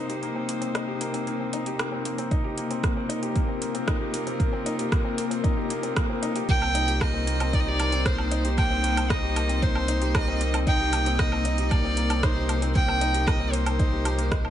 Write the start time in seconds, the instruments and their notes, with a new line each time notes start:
Already playing: sub bass C2, string quartet C3 A#3 D#4 C5, felt piano A#3 C4 D#4 G4
0.09 felt piano G4, closed hi-hat
0.23 felt piano A#3, closed hi-hat
0.36 felt piano C4
0.49 felt piano A#3, closed hi-hat
0.61 felt piano C4, closed hi-hat
0.75 felt piano D#4, cross-stick, closed hi-hat
0.88 felt piano G4
1.01 felt piano A#3, closed hi-hat
1.14 felt piano C4, closed hi-hat
1.27 felt piano A#3, closed hi-hat
1.40 felt piano C4
1.53 felt piano D#4, closed hi-hat
1.66 felt piano G4, closed hi-hat
1.79 felt piano A#3, cross-stick, closed hi-hat
1.92 felt piano C4
2.05 felt piano A#3, closed hi-hat
2.18 felt piano C4, closed hi-hat
2.24 string quartet A#4
2.31 felt piano D#4, kick, closed hi-hat
2.44 felt piano G4
2.58 felt piano A#3, closed hi-hat
2.71 felt piano C4, closed hi-hat
2.83 felt piano A#3, string quartet F4, kick, cross-stick, closed hi-hat
2.97 felt piano C4
3.09 felt piano D#4, closed hi-hat
3.23 felt piano G4, closed hi-hat
3.35 felt piano A#3, kick, closed hi-hat
3.48 felt piano C4
3.61 felt piano A#3, closed hi-hat
3.75 felt piano C4, closed hi-hat
3.87 felt piano D#4, kick, cross-stick, closed hi-hat
4.00 felt piano G4
4.13 felt piano A#3, closed hi-hat
4.27 felt piano C4, closed hi-hat
4.40 felt piano A#3, kick, closed hi-hat
4.53 felt piano C4
4.66 felt piano D#4, closed hi-hat
4.78 felt piano G4, closed hi-hat
4.92 felt piano A#3, kick, cross-stick, closed hi-hat
5.04 felt piano C4
5.17 felt piano A#3, closed hi-hat
5.30 felt piano C4, closed hi-hat
5.44 felt piano D#4, kick, closed hi-hat
5.57 felt piano G4
5.70 felt piano A#3, closed hi-hat
5.83 felt piano C4, closed hi-hat
5.96 felt piano A#3, kick, cross-stick, closed hi-hat
6.09 felt piano C4
6.23 felt piano D#4, closed hi-hat
6.36 felt piano G4, closed hi-hat
6.48 sub bass C2, string quartet C3, felt piano A#3, violin G5, kick, closed hi-hat
6.62 felt piano C4, low woodblock
6.75 felt piano D#4, closed hi-hat
6.88 string quartet D#4, felt piano G4, closed hi-hat
7.01 felt piano A#3, violin D#5, kick, cross-stick, closed hi-hat, low woodblock
7.11 felt piano C4, string quartet C5
7.27 felt piano A#3, closed hi-hat
7.40 felt piano C4, closed hi-hat, low woodblock
7.53 felt piano D#4, violin D5, kick, closed hi-hat
7.60 violin D#5
7.66 felt piano G4, violin D5
7.79 felt piano A#3, closed hi-hat, low woodblock
7.92 felt piano C4, closed hi-hat
8.05 felt piano A#3, violin C5, kick, cross-stick, closed hi-hat
8.18 felt piano C4, low woodblock
8.31 felt piano D#4, closed hi-hat
8.45 felt piano G4, closed hi-hat
8.58 felt piano A#3, violin G5, kick, closed hi-hat, low woodblock
8.71 felt piano C4
8.83 felt piano A#3, closed hi-hat
8.97 felt piano C4, closed hi-hat, low woodblock
9.10 felt piano D#4, violin D#5, kick, cross-stick, closed hi-hat
9.23 felt piano G4
9.36 felt piano A#3, closed hi-hat, low woodblock
9.49 felt piano C4, closed hi-hat
9.62 felt piano A#3, violin C5, kick, closed hi-hat
9.75 felt piano C4, low woodblock
9.88 felt piano D#4, closed hi-hat
10.02 felt piano G4, closed hi-hat
10.15 felt piano A#3, violin D#5, kick, cross-stick, closed hi-hat, low woodblock
10.28 felt piano C4
10.41 felt piano A#3, closed hi-hat
10.54 felt piano C4, closed hi-hat, low woodblock
10.67 felt piano D#4, violin G5, kick, closed hi-hat
10.80 felt piano G4
10.93 felt piano A#3, closed hi-hat, low woodblock
11.06 felt piano C4, closed hi-hat
11.13 string quartet A#4
11.19 felt piano A#3, violin D#5, kick, cross-stick, closed hi-hat
11.32 felt piano C4, low woodblock
11.45 felt piano D#4, closed hi-hat
11.58 felt piano G4, closed hi-hat
11.71 felt piano A#3, violin D5, kick, closed hi-hat, low woodblock
11.84 felt piano C4
11.97 felt piano A#3, closed hi-hat
12.10 felt piano C4, closed hi-hat, low woodblock
12.23 felt piano D#4, violin C5, kick, cross-stick, closed hi-hat
12.36 felt piano G4
12.49 felt piano A#3, closed hi-hat, low woodblock
12.62 felt piano C4, closed hi-hat
12.75 felt piano A#3, violin G5, kick, closed hi-hat
12.88 felt piano C4, low woodblock
13.01 felt piano D#4, closed hi-hat
13.14 felt piano G4, closed hi-hat
13.27 felt piano A#3, violin D#5, kick, cross-stick, closed hi-hat, low woodblock
13.40 felt piano C4
13.53 felt piano A#3, violin C5, closed hi-hat
13.66 felt piano C4, closed hi-hat, low woodblock
13.79 felt piano D#4, kick, closed hi-hat
13.93 felt piano G4
14.05 felt piano G4, closed hi-hat, low woodblock
14.18 felt piano A#3, closed hi-hat
14.31 felt piano D#5, kick, cross-stick, closed hi-hat
14.44 felt piano A#3, low woodblock